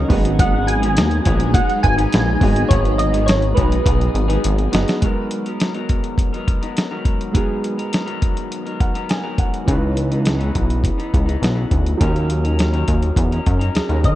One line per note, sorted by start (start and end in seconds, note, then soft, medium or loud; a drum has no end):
0.00 0.10 D#3 medium
0.00 0.12 C#4 medium
0.00 0.09 D#4 medium
0.00 0.10 D#4 medium
0.00 0.11 F#4 medium
0.00 2.37 F#4 medium
0.00 0.12 A#4 medium
0.00 0.13 D#5 medium
0.08 0.99 G#1 medium
0.08 0.37 F#3 medium
0.08 4.98 G#3 medium
0.08 2.36 B3 medium
0.08 0.38 B3 medium
0.08 2.37 D#4 medium
0.08 4.98 D#4 medium
0.08 0.39 D#4 medium
0.08 2.38 F#4 medium
0.08 0.40 G#4 medium
0.08 2.38 G#4 medium
0.08 4.98 B4 loud
0.08 kick medium
0.08 open hi-hat medium
0.13 2.39 D#5 medium
0.25 closed hi-hat medium
0.39 0.82 F#3 medium
0.39 0.82 B3 medium
0.39 0.82 D#4 medium
0.39 0.81 G#4 medium
0.39 0.69 F#5 loud
0.39 kick loud
0.39 closed hi-hat loud
0.67 1.57 G#5 loud
0.67 closed hi-hat loud
0.82 1.25 G#2 medium
0.82 1.25 D#3 medium
0.82 1.25 F#3 medium
0.82 1.25 B3 medium
0.82 1.26 D#4 medium
0.82 1.26 G#4 medium
0.82 closed hi-hat medium
0.97 1.20 D#2 medium
0.97 snare loud
0.97 closed hi-hat medium
1.11 closed hi-hat soft
1.25 1.60 A#1 medium
1.25 1.55 G#2 medium
1.25 1.55 D#3 medium
1.25 1.53 F#3 medium
1.25 1.54 B3 medium
1.25 1.55 D#4 medium
1.25 1.55 G#4 medium
1.25 kick medium
1.25 closed hi-hat medium
1.40 closed hi-hat medium
1.54 1.97 F#3 medium
1.54 1.97 B3 medium
1.54 1.97 D#4 medium
1.54 1.96 G#4 medium
1.54 1.84 F#5 loud
1.54 kick loud
1.54 closed hi-hat medium
1.70 closed hi-hat soft
1.83 2.07 G#1 loud
1.83 2.73 G#5 loud
1.83 kick medium
1.83 closed hi-hat medium
1.98 2.42 G#2 medium
1.98 2.42 D#3 medium
1.98 2.40 F#3 medium
1.98 2.40 B3 medium
1.98 2.41 D#4 medium
1.98 2.41 G#4 medium
1.98 closed hi-hat medium
2.13 2.37 A#1 loud
2.13 snare loud
2.13 closed hi-hat medium
2.39 2.65 G#1 medium
2.39 2.68 F#3 medium
2.39 4.68 B3 medium
2.39 2.69 B3 medium
2.39 4.69 D#4 medium
2.39 2.70 D#4 medium
2.39 4.69 F#4 medium
2.39 4.99 G#4 medium
2.39 4.70 G#4 medium
2.39 kick loud
2.39 open hi-hat medium
2.43 2.70 G#4 medium
2.43 4.70 D#5 medium
2.56 closed hi-hat soft
2.69 3.54 G#1 loud
2.69 3.12 F#3 medium
2.69 3.12 B3 medium
2.69 3.12 D#4 medium
2.69 3.12 G#4 medium
2.69 2.96 C#5 medium
2.69 kick loud
2.69 closed hi-hat loud
2.85 closed hi-hat soft
2.98 3.29 D#5 medium
2.98 closed hi-hat medium
3.13 3.54 G#2 medium
3.13 3.55 D#3 medium
3.13 3.54 F#3 medium
3.13 3.55 B3 medium
3.13 3.55 D#4 medium
3.13 3.55 G#4 medium
3.13 closed hi-hat medium
3.26 3.57 C#5 medium
3.26 snare loud
3.26 closed hi-hat medium
3.42 closed hi-hat soft
3.55 3.81 B1 medium
3.55 3.85 G#2 medium
3.55 3.86 D#3 medium
3.55 3.83 F#3 medium
3.55 3.84 B3 medium
3.55 3.84 D#4 medium
3.55 3.85 G#4 medium
3.55 4.39 B4 medium
3.55 kick medium
3.55 closed hi-hat medium
3.72 closed hi-hat medium
3.84 4.09 B1 loud
3.84 4.28 F#3 medium
3.84 4.27 B3 medium
3.84 4.27 D#4 medium
3.84 4.27 G#4 medium
3.84 kick loud
3.84 closed hi-hat medium
4.01 closed hi-hat soft
4.14 4.38 G#1 medium
4.14 closed hi-hat medium
4.28 4.73 G#2 medium
4.28 4.73 D#3 medium
4.28 4.70 F#3 medium
4.28 4.71 B3 medium
4.28 4.72 D#4 medium
4.28 4.72 G#4 medium
4.28 closed hi-hat medium
4.44 4.68 G#1 loud
4.44 closed hi-hat medium
4.58 closed hi-hat soft
4.71 4.85 G1 medium
4.71 5.01 F#3 medium
4.71 5.00 B3 medium
4.71 5.01 B3 medium
4.71 5.02 D#4 medium
4.71 5.02 F#4 medium
4.71 5.02 G#4 medium
4.71 5.03 G#4 medium
4.71 5.03 D#5 medium
4.71 snare loud
4.71 closed hi-hat medium
4.88 snare loud
4.88 closed hi-hat medium
5.00 5.45 G#2 medium
5.00 5.45 D#3 medium
5.00 5.46 F#3 medium
5.00 7.30 G#3 medium
5.00 7.30 B3 medium
5.00 5.46 B3 medium
5.00 5.45 D#4 medium
5.00 7.31 F#4 medium
5.00 5.44 A#4 medium
5.00 kick loud
5.00 closed hi-hat medium
5.05 7.32 A#4 medium
5.31 closed hi-hat medium
5.45 5.74 F#3 soft
5.45 5.74 B3 soft
5.45 5.73 D#4 soft
5.45 5.73 A#4 medium
5.45 closed hi-hat soft
5.60 snare medium
5.60 closed hi-hat medium
5.74 6.33 G#2 medium
5.74 6.92 D#3 medium
5.74 6.33 F#3 medium
5.74 6.34 B3 medium
5.74 6.33 D#4 medium
5.74 6.31 A#4 medium
5.74 closed hi-hat soft
5.89 kick medium
5.89 closed hi-hat medium
6.04 closed hi-hat soft
6.18 kick medium
6.18 closed hi-hat medium
6.33 6.63 F#3 soft
6.33 6.62 B3 soft
6.33 6.62 D#4 medium
6.33 6.60 A#4 soft
6.33 closed hi-hat soft
6.48 kick medium
6.48 closed hi-hat medium
6.62 6.91 F#3 soft
6.62 6.90 B3 soft
6.62 6.90 D#4 medium
6.62 6.90 A#4 medium
6.62 closed hi-hat soft
6.77 snare loud
6.77 closed hi-hat medium
6.91 7.33 G#2 medium
6.91 7.33 D#3 medium
6.91 7.33 F#3 medium
6.91 7.33 B3 medium
6.91 7.34 D#4 medium
6.91 7.34 A#4 medium
7.05 kick medium
7.05 closed hi-hat medium
7.21 closed hi-hat soft
7.32 7.78 G#2 medium
7.32 7.78 D#3 medium
7.32 7.78 F#3 medium
7.32 9.62 G#3 medium
7.32 9.63 B3 medium
7.32 7.78 B3 medium
7.32 7.77 D#4 medium
7.32 9.64 F#4 medium
7.32 7.76 A#4 medium
7.32 kick loud
7.32 closed hi-hat medium
7.37 9.65 G#4 medium
7.64 closed hi-hat medium
7.78 8.05 F#3 soft
7.78 8.06 B3 soft
7.78 8.05 D#4 medium
7.78 8.05 A#4 medium
7.78 closed hi-hat soft
7.93 snare medium
7.93 closed hi-hat medium
8.06 8.66 G#2 medium
8.06 9.24 D#3 medium
8.06 8.65 F#3 medium
8.06 8.66 B3 medium
8.06 8.65 D#4 medium
8.06 8.64 A#4 medium
8.06 closed hi-hat soft
8.22 kick medium
8.22 closed hi-hat medium
8.37 closed hi-hat soft
8.52 closed hi-hat medium
8.65 8.95 F#3 soft
8.65 8.94 B3 soft
8.65 8.94 D#4 medium
8.65 8.93 A#4 medium
8.65 closed hi-hat soft
8.80 9.07 F#5 medium
8.80 kick medium
8.80 closed hi-hat medium
8.94 9.23 F#3 soft
8.94 9.23 B3 soft
8.94 9.22 D#4 soft
8.94 9.22 A#4 medium
8.94 closed hi-hat soft
9.09 9.37 G#5 medium
9.09 snare medium
9.09 closed hi-hat medium
9.23 9.68 G#2 medium
9.23 9.66 D#3 medium
9.23 9.67 F#3 medium
9.23 9.66 B3 medium
9.23 9.67 D#4 medium
9.23 9.67 A#4 medium
9.38 9.66 F#5 medium
9.38 kick medium
9.38 closed hi-hat medium
9.54 closed hi-hat soft
9.65 10.51 C#2 loud
9.65 10.11 C#3 medium
9.65 11.96 E3 medium
9.65 10.10 E3 medium
9.65 10.10 B3 medium
9.65 11.96 C#4 medium
9.65 10.09 D#4 medium
9.65 11.97 D#4 medium
9.65 kick loud
9.65 closed hi-hat medium
9.71 11.98 B4 medium
9.97 closed hi-hat medium
10.10 10.38 E3 soft
10.10 10.38 B3 soft
10.10 10.37 D#4 soft
10.10 closed hi-hat medium
10.25 snare loud
10.25 closed hi-hat medium
10.39 10.98 C#3 medium
10.39 10.98 E3 medium
10.39 10.98 B3 medium
10.39 10.97 D#4 medium
10.39 closed hi-hat soft
10.55 10.90 B1 medium
10.55 kick medium
10.55 closed hi-hat medium
10.70 closed hi-hat soft
10.84 kick medium
10.84 closed hi-hat medium
10.98 11.27 E3 soft
10.98 11.27 B3 medium
10.98 11.25 D#4 soft
10.98 closed hi-hat soft
11.14 11.37 C#2 medium
11.14 kick medium
11.14 closed hi-hat medium
11.26 11.54 E3 soft
11.26 11.54 B3 soft
11.26 11.54 D#4 medium
11.26 closed hi-hat soft
11.42 11.65 B1 loud
11.42 snare loud
11.42 closed hi-hat medium
11.55 12.00 C#3 medium
11.55 12.00 E3 medium
11.55 12.00 B3 medium
11.55 12.00 D#4 medium
11.71 11.95 D2 medium
11.71 kick medium
11.71 closed hi-hat medium
11.86 closed hi-hat soft
11.98 12.84 D#2 loud
11.98 12.44 D#3 medium
11.98 13.70 F#3 medium
11.98 12.44 F#3 medium
11.98 13.71 C#4 medium
11.98 12.44 C#4 medium
11.98 13.72 D#4 medium
11.98 12.43 D#4 medium
11.98 12.43 A#4 medium
11.98 kick loud
11.98 closed hi-hat loud
12.03 13.73 A#4 medium
12.16 closed hi-hat soft
12.30 closed hi-hat medium
12.44 12.72 C#4 soft
12.44 12.72 D#4 soft
12.44 12.72 A#4 medium
12.44 closed hi-hat soft
12.59 snare medium
12.59 closed hi-hat medium
12.73 13.36 D#3 medium
12.73 13.32 F#3 medium
12.73 13.32 C#4 medium
12.73 13.32 D#4 medium
12.73 13.30 A#4 medium
12.73 closed hi-hat soft
12.88 13.11 D#2 medium
12.88 kick medium
12.88 closed hi-hat medium
13.02 closed hi-hat soft
13.16 13.40 E2 medium
13.16 kick medium
13.16 closed hi-hat medium
13.31 13.60 C#4 soft
13.31 13.59 D#4 soft
13.31 13.58 A#4 medium
13.31 closed hi-hat soft
13.46 13.70 F#2 medium
13.46 kick medium
13.46 closed hi-hat medium
13.59 13.89 C#4 soft
13.59 13.88 D#4 soft
13.59 13.88 A#4 medium
13.59 closed hi-hat soft
13.75 13.81 D#2 soft
13.75 13.89 G#4 soft
13.75 snare medium
13.75 closed hi-hat medium
13.89 14.06 D#2 medium
13.89 14.15 D#3 medium
13.89 14.15 F#3 medium
13.89 14.15 C#4 medium
13.89 14.15 D#4 medium
13.89 14.15 A#4 medium
13.89 closed hi-hat soft
14.04 14.15 D#3 medium
14.04 14.15 D#5 medium
14.04 kick medium
14.04 closed hi-hat medium